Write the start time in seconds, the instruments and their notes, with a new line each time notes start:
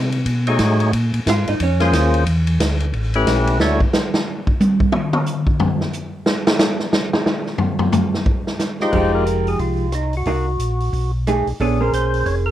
Already playing: tonewheel organ C3
0.12 ride
0.25 tonewheel organ B2, kick, ride
0.47 tonewheel organ A3 D#4 F#4 G#4 C#5, ride
0.59 tonewheel organ A2, kick, snare, hi-hat pedal, ride
0.80 ride
0.92 tonewheel organ A#2, kick, ride
1.13 tonewheel organ A#2, ride
1.26 tonewheel organ G#2, hollow-body jazz guitar F4 F5, kick, snare, hi-hat pedal, ride
1.47 tonewheel organ G#2, hollow-body jazz guitar D#4 D#5, ride
1.60 tonewheel organ F2, hollow-body jazz guitar C#4 C#5, kick, ride
1.80 tonewheel organ A#3 C#4 F4 G#4 C5, snare, ride
1.93 tonewheel organ D#2, kick, snare, hi-hat pedal, ride
2.14 ride
2.26 tonewheel organ E2, kick, ride
2.47 ride
2.60 tonewheel organ D2, kick, snare, hi-hat pedal, ride
2.80 ride
2.93 tonewheel organ A1, kick, ride
3.14 tonewheel organ A3 C#4 E4 G4 B4, ride
3.26 tonewheel organ B1, kick, snare, hi-hat pedal, ride
3.47 ride
3.59 tonewheel organ D2 A3 D4 E4 F#4 C#5, snare
3.81 kick
3.94 snare, hi-hat pedal
4.14 snare
4.47 kick
4.60 hi-hat pedal, high tom
4.80 kick
4.92 mid tom
5.13 mid tom
5.26 hi-hat pedal
5.47 kick
5.60 floor tom
5.81 snare
5.93 hi-hat pedal
6.26 snare
6.47 snare
6.59 snare, hi-hat pedal
6.79 snare
6.93 snare
7.13 snare
7.26 snare, hi-hat pedal
7.46 snare
7.58 floor tom
7.79 floor tom
7.92 floor tom, hi-hat pedal
8.14 snare
8.26 kick
8.47 snare
8.59 snare, hi-hat pedal
8.80 tonewheel organ G#3 D#4 F4 G4 C5, snare
8.92 tonewheel organ F1 B4 C5, hollow-body jazz guitar F3 G#3 D#4 G4, kick, crash
9.15 tonewheel organ A#4
9.27 closed hi-hat
9.47 tonewheel organ G#4, open hi-hat
9.59 tonewheel organ C2 F4, kick, open hi-hat
9.92 tonewheel organ D#4, cross-stick, closed hi-hat
10.13 open hi-hat
10.17 tonewheel organ F#4
10.25 tonewheel organ C2, hollow-body jazz guitar A#3 D#4 F#4, kick, open hi-hat
10.59 tonewheel organ A#1, closed hi-hat
10.80 open hi-hat
10.93 tonewheel organ B1, kick, open hi-hat
11.27 hollow-body jazz guitar A3 D#4 G#4, cross-stick, closed hi-hat
11.46 tonewheel organ B1, open hi-hat
11.60 tonewheel organ A#1 G#4, hollow-body jazz guitar B3 D4 A4 C#5, kick, open hi-hat
11.81 hollow-body jazz guitar A#3 C#4 G#4 C5, tonewheel organ A#4
11.92 tonewheel organ B1 C5, closed hi-hat
12.14 open hi-hat
12.26 tonewheel organ F1 C#5, kick, open hi-hat
12.46 tonewheel organ A#4